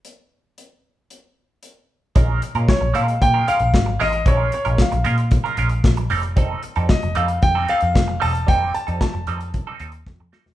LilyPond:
<<
  \new Staff \with { instrumentName = "Grand piano" } { \time 4/4 \key bes \dorian \tempo 4 = 114 r1 | r4 des''8 f''8 g''8 f''4 ees''8 | des''8 des''8 f''2 r4 | r4 ees''8 f''8 g''8 f''4 a''8 |
g''8 a''8 a''2 r4 | }
  \new Staff \with { instrumentName = "Clean electric guitar" } { \time 4/4 \key bes \dorian r1 | <aes des' f' bes'>8 r16 <aes des' f' bes'>16 r8 <aes des' f' bes'>8 r16 <aes des' f' bes'>16 <aes des' f' bes'>16 r8. <aes des' f' bes'>16 r16 | <aes des' f' bes'>8 r16 <aes des' f' bes'>16 r8 <aes des' f' bes'>16 r8 <aes des' f' bes'>16 <aes des' f' bes'>16 r8. <g c' ees' a'>16 r16 | <g c' ees' a'>8 r16 <g c' ees' a'>16 r8 <g c' ees' a'>16 r8 <g c' ees' a'>16 <g c' ees' a'>16 r8. <g c' ees' a'>16 r16 |
<g c' ees' a'>8 r16 <g c' ees' a'>16 r8 <g c' ees' a'>16 r8 <g c' ees' a'>16 <g c' ees' a'>16 r8. <g c' ees' a'>16 r16 | }
  \new Staff \with { instrumentName = "Picked electric bass" } { \clef bass \time 4/4 \key bes \dorian r1 | bes,,8 r16 bes,16 r16 bes,,16 bes,8 bes,8 r16 bes,,16 aes,,8 a,,8 | bes,,8 r16 bes,,16 r16 bes,,16 bes,8. r16 bes,,8 bes,,8 f,,8~ | f,,8 r16 f,16 r16 f,,16 f,8 f,8 r16 f,16 f,,8 e,,8 |
f,,8 r16 f,16 r16 f,,16 f,8. r16 ees,8 f,16 f,16 r16 e,,16 | }
  \new DrumStaff \with { instrumentName = "Drums" } \drummode { \time 4/4 hh4 hh4 hh4 hh4 | <hh bd>8 hh16 hh16 <bd sn>8 hh16 hh16 <hh bd>8 hh16 hh16 <bd sn>8 <hho sn>16 hh16 | <hh bd>8 hh16 hh16 <bd sn>16 hh16 hh16 hh16 <hh bd>16 hh16 hh16 hh16 <bd sn>16 hh16 hho16 hh16 | <hh bd>8 hh16 hh16 <bd sn>16 hh16 hh16 hh16 <hh bd>8 hh16 hh16 <bd sn>8 hho16 hh16 |
<hh bd>8 hh16 hh16 <bd sn>8 hh16 hh16 <hh bd>8 hh16 hh16 <bd sn>8 sn16 sn16 | }
>>